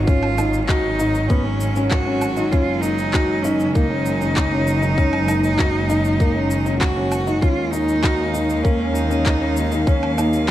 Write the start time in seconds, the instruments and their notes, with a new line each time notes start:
Already playing: double bass section G#1, string quartet D#3 F#3 G#3 C#4
0.05 felt piano C#4, cello F4, kick, shaker
0.23 low woodblock
0.38 felt piano D#4, low woodblock, shaker
0.53 shaker
0.67 cello D#4, felt piano F#4, kick, clap, shaker
0.99 felt piano D#4, shaker
1.15 shaker
1.28 felt piano B3, cello C#4, kick, shaker
1.45 felt piano C#4
1.61 shaker
1.76 felt piano C#4, shaker
1.90 cello F#4, kick, clap, shaker
2.06 felt piano C#4
2.21 low woodblock, shaker
2.37 felt piano D#4, shaker
2.51 double bass section F#1, felt piano C#4, cello F4, kick, shaker
2.81 cello D#4, felt piano D#4, shaker
2.98 shaker
3.14 felt piano F#4, kick, clap, shaker
3.42 cello C#4, felt piano D#4, shaker
3.60 shaker
3.74 felt piano A#3, cello D#4, kick, shaker
3.90 felt piano C#4
4.06 shaker
4.21 felt piano C#4, shaker
4.36 kick, clap, shaker
4.52 felt piano C#4
4.67 shaker
4.82 felt piano D#4, shaker
4.98 felt piano C#4, kick, shaker
5.13 low woodblock
5.28 felt piano D#4, low woodblock, shaker
5.44 shaker
5.59 felt piano F#4, kick, clap, shaker
5.89 felt piano D#4, shaker
6.05 shaker
6.20 felt piano A#3, kick, shaker
6.35 felt piano C#4
6.51 shaker
6.66 felt piano C#4, shaker
6.79 cello F#4, kick, clap, shaker
6.97 felt piano C#4
7.12 low woodblock, shaker
7.27 felt piano D#4, shaker
7.41 double bass section D#2, string quartet D#3, felt piano C#4, cello F4, kick, shaker
7.72 cello D#4, felt piano D#4, shaker
7.89 shaker
8.04 felt piano F#4, kick, clap, shaker
8.20 string quartet F5
8.34 felt piano D#4, shaker
8.50 shaker
8.63 felt piano A#3, cello C#4, kick, shaker
8.80 felt piano C#4
8.94 cello D#4, shaker
9.10 felt piano C#4, shaker
9.26 kick, clap, shaker
9.41 felt piano C#4
9.57 shaker
9.72 felt piano D#4, shaker
9.86 cello C#4, felt piano C#4, kick, shaker
10.03 low woodblock
10.17 cello A#3, felt piano D#4, low woodblock, shaker
10.33 shaker